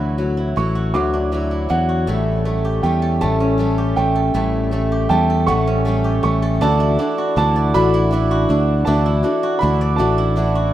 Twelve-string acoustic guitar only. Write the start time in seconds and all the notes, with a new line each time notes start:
Already playing: D3 E3 A3 E4 F#4
0.18 A3 E4 F#4
0.56 E3 A3 E4 F#4
0.94 D3 E3 A3 E4 F#4
1.32 E3 A3 E4 F#4
1.69 A3 E4 F#4
2.07 A2 E3 G3 A3 C#4 A4
2.45 G3 A3 C#4 A4
2.83 G3 A3 C#4 A4
3.21 A2 E3 G3 A3 C#4 A4
3.58 G3 A3 C#4 A4
3.96 G3 A3 C#4 A4
4.34 A2 E3 G3 A3 C#4 A4
4.71 G3 A3 C#4 A4
5.09 G3 A3 C#4 A4
5.47 A2 E3 G3 A3 C#4 A4
5.85 G3 A3 C#4 A4
6.23 G3 A3 C#4 A4
6.61 D3 E3 A3 E4 F#4
6.99 A3 E4 F#4
7.36 E3 A3 E4 F#4
7.74 D3 E3 A3 E4 F#4
8.11 E3 A3 E4 F#4
8.49 A3 E4 F#4
8.86 D3 E3 A3 E4 F#4
9.23 A3 E4 F#4
9.61 E3 A3 E4 F#4
9.98 D3 E3 A3 E4 F#4
10.36 E3 A3 E4 F#4